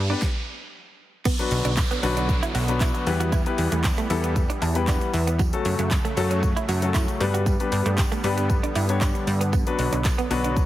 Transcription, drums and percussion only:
0.22 kick, snare
1.25 kick, crash, tambourine, shaker
1.39 closed hi-hat, shaker
1.51 open hi-hat, shaker
1.65 closed hi-hat, shaker
1.77 kick, clap, tambourine, shaker
1.91 closed hi-hat, shaker
2.03 open hi-hat, tambourine, shaker
2.17 closed hi-hat, shaker
2.29 kick, tambourine, shaker
2.43 closed hi-hat, shaker
2.55 open hi-hat, tambourine, shaker
2.68 closed hi-hat, shaker
2.81 kick, clap, tambourine, shaker
2.95 closed hi-hat, shaker
3.06 open hi-hat, tambourine, shaker
3.21 closed hi-hat, shaker
3.32 kick, tambourine, shaker
3.46 closed hi-hat, shaker
3.58 open hi-hat, shaker
3.72 closed hi-hat, shaker
3.84 kick, clap, tambourine, shaker
3.98 closed hi-hat, shaker
4.10 open hi-hat, tambourine, shaker
4.24 closed hi-hat, shaker
4.36 kick, tambourine, shaker
4.50 closed hi-hat, shaker
4.62 open hi-hat, tambourine, shaker
4.75 closed hi-hat, shaker
4.87 kick, clap, tambourine, shaker
5.01 closed hi-hat, shaker
5.14 open hi-hat, tambourine, shaker
5.27 closed hi-hat, shaker
5.39 kick, tambourine, shaker
5.53 closed hi-hat, shaker
5.65 open hi-hat, tambourine, shaker
5.79 closed hi-hat, shaker
5.91 kick, clap, tambourine, shaker
6.05 closed hi-hat, shaker
6.17 open hi-hat, tambourine, shaker
6.31 closed hi-hat, shaker
6.43 kick, tambourine, shaker
6.57 closed hi-hat, shaker
6.69 open hi-hat, tambourine, shaker
6.82 closed hi-hat, shaker
6.94 kick, clap, tambourine, shaker
7.08 closed hi-hat, shaker
7.20 open hi-hat, tambourine, shaker
7.35 closed hi-hat, shaker
7.46 kick, tambourine, shaker
7.60 closed hi-hat, shaker
7.72 open hi-hat, tambourine, shaker
7.86 closed hi-hat, shaker
7.98 kick, clap, tambourine, shaker
8.12 closed hi-hat, shaker
8.24 open hi-hat, tambourine, shaker
8.38 closed hi-hat, shaker
8.50 kick, tambourine, shaker
8.64 closed hi-hat, shaker
8.75 open hi-hat, tambourine, shaker
8.89 closed hi-hat, shaker
9.01 kick, clap, tambourine, shaker
9.15 closed hi-hat, shaker
9.27 open hi-hat, tambourine, shaker
9.41 closed hi-hat, shaker
9.53 kick, tambourine, shaker
9.67 closed hi-hat, shaker
9.79 open hi-hat, shaker
9.93 closed hi-hat, shaker
10.05 kick, clap, tambourine, shaker
10.19 closed hi-hat, shaker
10.31 open hi-hat, tambourine, shaker
10.44 closed hi-hat, shaker
10.57 kick, tambourine, shaker

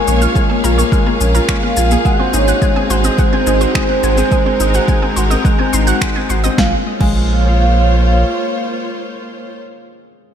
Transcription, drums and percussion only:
0.08 shaker
0.22 shaker
0.36 kick, shaker
0.64 shaker
0.79 shaker
0.92 kick, shaker
1.21 shaker
1.35 shaker
1.49 finger snap, kick, shaker
1.77 shaker
1.91 shaker
2.05 kick, shaker
2.34 shaker
2.48 shaker
2.62 kick, shaker
2.90 shaker
3.04 shaker
3.18 kick, shaker
3.47 shaker
3.61 shaker
3.75 finger snap, kick, shaker
4.03 shaker
4.18 shaker
4.32 kick, shaker
4.60 shaker
4.74 shaker
4.88 kick, shaker
5.17 shaker
5.31 shaker
5.45 kick, shaker
5.73 shaker
5.87 shaker
6.01 finger snap, kick, shaker
6.30 shaker
6.44 shaker
6.58 kick, snare
7.01 kick, crash

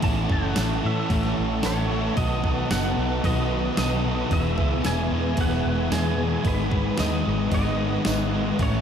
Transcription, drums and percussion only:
0.02 kick, open hi-hat
0.30 kick
0.56 snare, open hi-hat, tambourine
0.70 snare
1.10 kick, open hi-hat
1.23 snare
1.63 snare, open hi-hat, tambourine
2.17 kick, open hi-hat
2.44 kick
2.71 snare, open hi-hat, tambourine
2.84 snare
3.24 kick, open hi-hat
3.77 snare, open hi-hat, tambourine
4.31 kick, open hi-hat
4.58 kick
4.84 snare, open hi-hat, tambourine
5.37 kick, open hi-hat
5.51 snare
5.92 snare, open hi-hat, tambourine
6.45 kick, open hi-hat
6.72 kick
6.97 snare, open hi-hat, tambourine
7.12 snare
7.52 kick, open hi-hat
8.05 snare, open hi-hat, tambourine
8.59 kick, open hi-hat

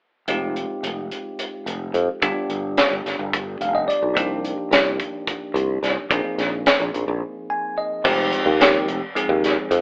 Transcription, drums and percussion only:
0.28 closed hi-hat
0.56 closed hi-hat
0.84 closed hi-hat
1.11 closed hi-hat
1.39 closed hi-hat
1.67 closed hi-hat
1.94 closed hi-hat
2.22 kick, closed hi-hat
2.50 closed hi-hat
2.77 snare, closed hi-hat
3.06 snare, closed hi-hat
3.33 kick, closed hi-hat
3.61 closed hi-hat
3.90 closed hi-hat
4.17 kick, closed hi-hat
4.45 closed hi-hat
4.73 snare, closed hi-hat
5.00 kick, closed hi-hat
5.27 kick, closed hi-hat
5.56 closed hi-hat
5.84 snare, closed hi-hat
6.11 kick, closed hi-hat
6.39 snare, closed hi-hat
6.66 snare, closed hi-hat
6.94 closed hi-hat
8.05 kick, crash
8.33 closed hi-hat
8.61 snare, closed hi-hat
8.88 closed hi-hat
9.16 closed hi-hat
9.44 snare, closed hi-hat
9.71 closed hi-hat

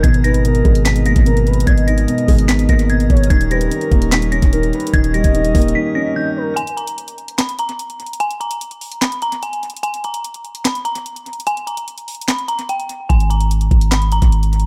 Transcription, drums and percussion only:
0.04 kick, closed hi-hat
0.14 closed hi-hat
0.24 closed hi-hat
0.34 closed hi-hat
0.45 closed hi-hat
0.55 closed hi-hat
0.65 kick, closed hi-hat
0.75 closed hi-hat
0.85 snare, clap, closed hi-hat
0.96 closed hi-hat
1.06 closed hi-hat
1.16 kick, closed hi-hat
1.26 closed hi-hat
1.37 closed hi-hat
1.47 closed hi-hat
1.53 closed hi-hat
1.60 closed hi-hat
1.67 kick, closed hi-hat
1.78 closed hi-hat
1.88 closed hi-hat
1.98 closed hi-hat
2.08 closed hi-hat
2.18 closed hi-hat
2.28 kick, closed hi-hat, open hi-hat
2.39 closed hi-hat
2.49 snare, clap, closed hi-hat
2.59 closed hi-hat
2.69 kick, closed hi-hat
2.79 closed hi-hat
2.90 closed hi-hat
3.00 closed hi-hat
3.10 kick, closed hi-hat
3.17 closed hi-hat
3.24 closed hi-hat
3.30 kick, closed hi-hat
3.41 closed hi-hat
3.51 closed hi-hat
3.61 closed hi-hat
3.71 closed hi-hat
3.81 closed hi-hat
3.92 kick, closed hi-hat
4.02 closed hi-hat
4.12 snare, clap, closed hi-hat
4.22 closed hi-hat
4.32 closed hi-hat
4.42 kick, closed hi-hat
4.53 closed hi-hat
4.63 closed hi-hat
4.73 closed hi-hat
4.80 closed hi-hat
4.87 closed hi-hat
4.94 kick, closed hi-hat
5.04 closed hi-hat
5.14 closed hi-hat
5.24 kick, closed hi-hat
5.35 closed hi-hat
5.45 closed hi-hat
5.55 kick, closed hi-hat, open hi-hat
5.62 closed hi-hat
5.68 closed hi-hat
6.57 closed hi-hat
6.67 closed hi-hat
6.78 closed hi-hat
6.87 closed hi-hat
6.98 closed hi-hat
7.08 closed hi-hat
7.18 closed hi-hat
7.28 closed hi-hat
7.38 snare, clap, closed hi-hat
7.49 closed hi-hat
7.59 closed hi-hat
7.69 closed hi-hat
7.79 closed hi-hat
7.90 closed hi-hat
8.00 closed hi-hat
8.06 closed hi-hat
8.13 closed hi-hat
8.20 closed hi-hat
8.31 closed hi-hat
8.41 closed hi-hat
8.51 closed hi-hat
8.61 closed hi-hat
8.71 closed hi-hat
8.81 closed hi-hat, open hi-hat
8.92 closed hi-hat
9.02 snare, clap, closed hi-hat
9.12 closed hi-hat
9.22 closed hi-hat
9.32 closed hi-hat
9.43 closed hi-hat
9.53 closed hi-hat
9.63 closed hi-hat
9.70 closed hi-hat
9.77 closed hi-hat
9.83 closed hi-hat
9.94 closed hi-hat
10.04 closed hi-hat
10.14 closed hi-hat
10.24 closed hi-hat
10.34 closed hi-hat
10.45 closed hi-hat
10.55 closed hi-hat
10.65 snare, clap, closed hi-hat
10.75 closed hi-hat
10.85 closed hi-hat
10.95 closed hi-hat
11.06 closed hi-hat
11.16 closed hi-hat
11.26 closed hi-hat
11.33 closed hi-hat
11.40 closed hi-hat
11.47 closed hi-hat
11.57 closed hi-hat
11.67 closed hi-hat
11.77 closed hi-hat
11.88 closed hi-hat
11.98 closed hi-hat
12.08 closed hi-hat, open hi-hat
12.15 closed hi-hat
12.21 closed hi-hat
12.28 snare, clap, closed hi-hat
12.39 closed hi-hat
12.48 closed hi-hat
12.59 closed hi-hat
12.69 closed hi-hat
12.80 closed hi-hat
12.89 closed hi-hat
13.10 kick, closed hi-hat
13.20 closed hi-hat
13.31 closed hi-hat
13.41 closed hi-hat
13.51 closed hi-hat
13.61 closed hi-hat
13.71 kick, closed hi-hat
13.81 closed hi-hat
13.92 snare, clap, closed hi-hat
14.02 closed hi-hat
14.12 closed hi-hat
14.22 kick, closed hi-hat
14.32 closed hi-hat
14.43 closed hi-hat
14.53 closed hi-hat
14.60 closed hi-hat

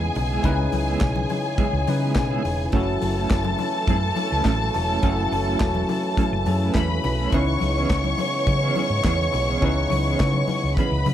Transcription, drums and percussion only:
0.15 open hi-hat, muted conga, low conga
0.44 kick, closed hi-hat, muted conga
0.72 open hi-hat, high conga
1.01 kick, snare, clap, closed hi-hat
1.16 high conga
1.29 open hi-hat, muted conga, high conga, low conga
1.58 kick, closed hi-hat, muted conga, high conga
1.87 open hi-hat, muted conga, high conga
2.16 kick, snare, clap, closed hi-hat
2.45 open hi-hat, low conga
2.72 kick, closed hi-hat, muted conga
3.01 open hi-hat, high conga
3.30 kick, snare, clap, closed hi-hat
3.45 high conga
3.59 open hi-hat, high conga, low conga
3.88 kick, closed hi-hat, muted conga, high conga
4.16 open hi-hat, muted conga, high conga
4.45 kick, snare, clap, closed hi-hat, muted conga
4.74 open hi-hat, low conga
5.03 kick, closed hi-hat
5.32 open hi-hat, high conga
5.60 kick, snare, clap, closed hi-hat, muted conga
5.75 high conga
5.89 open hi-hat, muted conga, high conga, low conga
6.17 kick, closed hi-hat, high conga
6.46 open hi-hat, muted conga, high conga
6.75 kick, snare, clap, closed hi-hat
7.04 open hi-hat, muted conga, low conga
7.32 kick, closed hi-hat
7.60 open hi-hat, high conga
7.90 kick, snare, clap, closed hi-hat, muted conga
8.04 high conga
8.18 open hi-hat, muted conga, high conga, low conga
8.47 kick, closed hi-hat, muted conga, high conga
8.76 open hi-hat, muted conga, high conga
9.04 kick, snare, clap, closed hi-hat
9.33 open hi-hat, muted conga, low conga
9.62 kick, closed hi-hat
9.90 open hi-hat, muted conga, high conga
10.19 kick, snare, clap, closed hi-hat, muted conga
10.33 high conga
10.48 open hi-hat, muted conga, high conga, low conga
10.77 kick, closed hi-hat, high conga
11.06 open hi-hat, muted conga, high conga

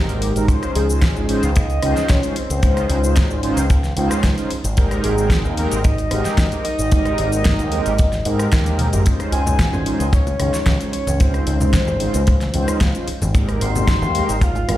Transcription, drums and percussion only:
0.09 closed hi-hat, shaker
0.22 open hi-hat
0.36 closed hi-hat, shaker
0.48 kick, closed hi-hat, shaker
0.63 cross-stick, closed hi-hat, shaker
0.75 open hi-hat
0.90 shaker
1.02 kick, snare, closed hi-hat, shaker
1.16 shaker
1.29 open hi-hat
1.43 closed hi-hat, shaker
1.56 kick, closed hi-hat, shaker
1.70 closed hi-hat, shaker
1.83 cross-stick, open hi-hat
1.97 snare, closed hi-hat, shaker
2.09 kick, snare, closed hi-hat, shaker
2.23 closed hi-hat, shaker
2.36 open hi-hat
2.50 closed hi-hat, shaker
2.63 kick, closed hi-hat, shaker
2.77 cross-stick, closed hi-hat, shaker
2.90 open hi-hat
3.04 shaker
3.16 kick, snare, closed hi-hat, shaker
3.30 shaker
3.43 open hi-hat
3.57 closed hi-hat, shaker
3.70 kick, closed hi-hat, shaker
3.84 snare, closed hi-hat, shaker
3.97 open hi-hat
4.11 cross-stick, closed hi-hat, shaker
4.24 kick, snare, closed hi-hat, shaker
4.38 closed hi-hat, shaker
4.51 open hi-hat
4.64 closed hi-hat, shaker
4.77 kick, closed hi-hat, shaker
4.91 cross-stick, closed hi-hat, shaker
5.04 open hi-hat
5.18 shaker
5.30 kick, snare, closed hi-hat, shaker
5.45 shaker
5.57 open hi-hat
5.72 closed hi-hat, shaker
5.84 kick, closed hi-hat, shaker
5.98 closed hi-hat, shaker
6.11 cross-stick, open hi-hat
6.25 snare, closed hi-hat, shaker
6.38 kick, snare, closed hi-hat, shaker
6.52 closed hi-hat, shaker
6.65 open hi-hat
6.79 closed hi-hat, shaker
6.92 kick, closed hi-hat, shaker
7.05 cross-stick, closed hi-hat, shaker
7.18 open hi-hat
7.32 closed hi-hat, shaker
7.45 kick, snare, closed hi-hat, shaker
7.59 closed hi-hat, shaker
7.72 open hi-hat
7.86 closed hi-hat, shaker
7.98 kick, closed hi-hat, shaker
8.13 snare, closed hi-hat, shaker
8.25 open hi-hat
8.39 cross-stick, closed hi-hat, shaker
8.52 kick, snare, closed hi-hat, shaker
8.66 closed hi-hat, high tom, shaker
8.79 open hi-hat, mid tom
8.93 closed hi-hat, mid tom, shaker
9.06 kick, closed hi-hat, shaker
9.20 cross-stick, closed hi-hat, shaker
9.32 open hi-hat
9.47 low conga, shaker
9.59 kick, snare, closed hi-hat, shaker
9.73 high bongo, high conga, shaker
9.86 open hi-hat
10.00 closed hi-hat, shaker
10.13 kick, closed hi-hat, shaker
10.27 closed hi-hat, high bongo, shaker
10.40 cross-stick, open hi-hat, high conga
10.54 snare, closed hi-hat, shaker
10.66 kick, snare, closed hi-hat, shaker
10.81 closed hi-hat, shaker
10.93 open hi-hat
11.07 closed hi-hat, high conga, shaker
11.20 kick, closed hi-hat, shaker
11.34 cross-stick, closed hi-hat, shaker
11.47 open hi-hat
11.61 low conga, shaker
11.73 kick, snare, closed hi-hat, shaker
11.87 high bongo, high conga, shaker
12.00 open hi-hat
12.14 closed hi-hat, shaker
12.27 kick, closed hi-hat, shaker
12.41 snare, closed hi-hat, high bongo, shaker
12.54 open hi-hat, high conga
12.68 cross-stick, closed hi-hat, shaker
12.81 kick, snare, closed hi-hat, shaker
12.95 closed hi-hat, shaker
13.08 open hi-hat
13.22 closed hi-hat, high conga, shaker
13.35 kick, closed hi-hat, shaker
13.49 cross-stick, closed hi-hat, shaker
13.61 open hi-hat
13.76 low conga, shaker
13.88 kick, snare, closed hi-hat, shaker
14.02 high bongo, high conga, shaker
14.15 open hi-hat
14.29 closed hi-hat, shaker
14.41 kick, closed hi-hat, shaker
14.55 closed hi-hat, high bongo, shaker
14.69 cross-stick, open hi-hat, high conga

